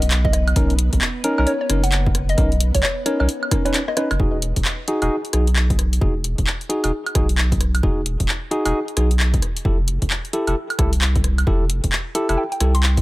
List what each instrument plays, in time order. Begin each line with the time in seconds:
Already playing: sub bass B1, string machine B3 B4
0.02 closed hi-hat
0.11 clap, closed hi-hat
0.25 synth pluck D#5, kick
0.33 synth pluck D#5, cross-stick, closed hi-hat
0.48 closed hi-hat, high woodblock
0.56 sub bass B1, tine electric piano C#4 D#4 A#4, kick, closed hi-hat
0.70 closed hi-hat
0.79 closed hi-hat
0.93 sub bass B1, kick, closed hi-hat
1.01 clap
1.24 tine electric piano C#4 D#4 A#4, closed hi-hat
1.38 sub bass B1, tine electric piano C#4 D#4 A#4, high woodblock
1.47 synth pluck C#5, closed hi-hat
1.61 synth pluck C#5
1.70 sub bass F#1, tine electric piano C#4 D#4 A#4, cross-stick, closed hi-hat
1.83 synth pluck F#5, closed hi-hat
1.92 clap, closed hi-hat
2.06 kick
2.15 cross-stick, closed hi-hat
2.29 synth pluck D#5, closed hi-hat
2.38 sub bass B1, tine electric piano C#4 D#4 A#4, kick, closed hi-hat
2.52 closed hi-hat
2.60 closed hi-hat
2.75 sub bass B1, synth pluck C#5, kick, closed hi-hat
2.83 synth pluck C#5, clap
3.06 tine electric piano C#4 D#4 A#4, synth pluck C#5, closed hi-hat
3.20 sub bass B1, tine electric piano C#4 D#4 A#4, synth pluck C#5, high woodblock
3.29 closed hi-hat
3.43 high woodblock
3.51 tine electric piano C#4 D#4 A#4, kick, cross-stick, closed hi-hat
3.65 tine electric piano C#4 D#4 B4, synth pluck C#5, closed hi-hat
3.74 cross-stick, clap, closed hi-hat
3.88 synth pluck D#5, cross-stick
3.97 tine electric piano C#4 D#4 B4, synth pluck D#5, cross-stick, closed hi-hat
4.11 sub bass F#1, cross-stick, closed hi-hat, high woodblock
4.20 sub bass E1, tine electric piano D#4 F#4 G#4, kick
4.42 closed hi-hat
4.56 sub bass E1, kick, closed hi-hat
4.65 clap
4.88 tine electric piano D#4 F#4 G#4, closed hi-hat
5.02 sub bass E1, tine electric piano D#4 F#4 G#4, closed hi-hat, high woodblock
5.25 closed hi-hat
5.33 sub bass B1, tine electric piano D#4 F#4 G#4, cross-stick, closed hi-hat
5.47 closed hi-hat
5.56 clap
5.70 kick, closed hi-hat
5.79 cross-stick, closed hi-hat
5.93 closed hi-hat
6.01 sub bass E1, tine electric piano D#4 F#4 G#4, kick
6.24 closed hi-hat
6.38 sub bass E1, kick, closed hi-hat
6.47 clap
6.61 closed hi-hat
6.69 tine electric piano D#4 F#4 G#4, closed hi-hat
6.84 sub bass E1, tine electric piano D#4 F#4 G#4, closed hi-hat, high woodblock
7.06 closed hi-hat, high woodblock
7.15 sub bass B1, tine electric piano D#4 F#4 G#4, kick, cross-stick, closed hi-hat
7.29 closed hi-hat
7.38 clap
7.52 kick, closed hi-hat
7.61 cross-stick, closed hi-hat
7.75 closed hi-hat, high woodblock
7.83 sub bass E1, tine electric piano D#4 F#4 G#4, kick
8.06 closed hi-hat
8.20 sub bass E1, kick, closed hi-hat
8.29 clap
8.51 tine electric piano D#4 F#4 G#4, closed hi-hat
8.65 sub bass E1, tine electric piano D#4 F#4 G#4, closed hi-hat, high woodblock
8.88 closed hi-hat
8.97 sub bass B1, tine electric piano D#4 F#4 G#4, cross-stick, closed hi-hat
9.11 closed hi-hat
9.20 clap
9.34 kick, closed hi-hat
9.42 cross-stick, closed hi-hat
9.57 closed hi-hat
9.65 sub bass F1, tine electric piano E4 G4 A4, kick
9.88 closed hi-hat
10.02 sub bass F1, kick, closed hi-hat
10.10 clap
10.25 closed hi-hat
10.33 tine electric piano E4 G4 A4, closed hi-hat
10.47 sub bass F1, tine electric piano E4 G4 A4, closed hi-hat, high woodblock
10.70 closed hi-hat, high woodblock
10.79 sub bass C2, tine electric piano E4 G4 A4, kick, cross-stick, closed hi-hat
10.93 closed hi-hat
11.01 clap
11.16 kick, closed hi-hat
11.24 cross-stick, closed hi-hat
11.38 closed hi-hat, high woodblock
11.47 sub bass F1, tine electric piano E4 G4 A4, kick
11.70 closed hi-hat
11.84 sub bass F1, kick, closed hi-hat
11.92 clap
12.15 tine electric piano E4 G4 A4, closed hi-hat
12.29 sub bass F1, tine electric piano E4 G4 A4, closed hi-hat, high woodblock
12.38 synth pluck G5
12.52 synth pluck G5, closed hi-hat
12.60 sub bass C2, tine electric piano E4 G4 A4, cross-stick, closed hi-hat
12.75 synth pluck C6, closed hi-hat
12.83 clap
12.97 kick, closed hi-hat